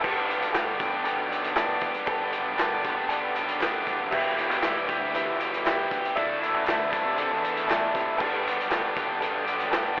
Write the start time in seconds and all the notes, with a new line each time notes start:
0.01 G1 G2 D3 G3 B3 D4 A4 B4 G5, kick
0.05 G4, crash
0.27 G3 B3 D4 G4, closed hi-hat
0.40 B1, closed hi-hat
0.52 G1 G3 B3 D4 G4 A4 B4 G5, snare, clap, closed hi-hat
0.77 E1 G3 B3 D4 G4, kick, closed hi-hat
0.92 E2
1.03 G2 D3 G3 B3 D4 G4 A4 B4 G5, closed hi-hat
1.18 B1
1.29 G3 B3 D4 G4, closed hi-hat
1.44 closed hi-hat
1.53 G3 B3 D4 G4 A4 B4 G5, snare, clap, closed hi-hat
1.81 E2, kick, closed hi-hat
1.94 closed hi-hat
2.05 G1 G2 D3 G3 B3 D4 G4 A4 B4 G5, kick, closed hi-hat
2.31 G3 B3 D4 G4, closed hi-hat
2.45 B1
2.55 G1 G3 B3 D4 G4 A4 B4 G5, snare, clap, closed hi-hat
2.82 E1 G3 B3 D4 G4, kick, closed hi-hat
2.96 E2
3.08 G2 D3 G3 B3 D4 G4 A4 B4 G5, closed hi-hat
3.21 B1
3.34 G3 B3 D4 G4, clap, closed hi-hat
3.48 closed hi-hat
3.60 F#1 G3 B3 D4 A4 B4 G5, snare, clap, closed hi-hat
3.64 G4
3.86 E1, kick, closed hi-hat
4.11 E1 E2 B2 E3 G3 E4 G4 B4 E5 G5, kick, crash
4.15 G4
4.37 E3 G3 E4 G4, closed hi-hat
4.50 A1, closed hi-hat
4.61 E1 E3 G3 E4 G4 B4 E5, snare, clap, closed hi-hat
4.65 G4
4.88 D2 E3 G3 E4 G4, kick, closed hi-hat
5.00 D2
5.13 E2 B2 E3 G3 E4 G4 B4 E5, closed hi-hat
5.27 G1
5.39 E3 G3 E4 G4, closed hi-hat
5.54 closed hi-hat
5.64 E3 G3 E4 G4 B4 E5, snare, clap, closed hi-hat
5.90 D2, kick, closed hi-hat
6.05 closed hi-hat
6.15 D2 D3 E3 A3 D4 E4 A4 D5 E5 A5, kick, closed hi-hat
6.40 A3 D4 E4, closed hi-hat
6.54 F#2
6.64 D2 E3 A3 D4 E4 A4 D5, snare, clap, closed hi-hat
6.69 E5
6.91 C2 A3 D4 E4, kick, closed hi-hat
7.05 C3
7.17 D3 E3 A3 D4 E4 A4 D5 E5, closed hi-hat
7.31 E2
7.42 A3 D4 E4, closed hi-hat
7.57 closed hi-hat
7.66 E3 A3 D4 E4 A4 D5 G5, clap
7.70 snare, closed hi-hat
7.94 C3, kick, closed hi-hat
8.17 G1 G2 D3 G3 B3 D4 A4 B4 G5, kick, crash
8.21 G4
8.45 G3 B3 D4 G4, closed hi-hat
8.57 B1, closed hi-hat
8.69 G1 G3 B3 D4 G4 A4 B4 G5, snare, clap, closed hi-hat
8.95 E1 G3 B3 D4 G4, kick, closed hi-hat
9.09 E2
9.19 G2 D3 G3 B3 D4 G4 A4 B4 G5, closed hi-hat
9.33 B1
9.45 G3 B3 D4 G4, closed hi-hat
9.60 closed hi-hat
9.70 G3 B3 D4 G4 A4 B4 G5, snare, clap, closed hi-hat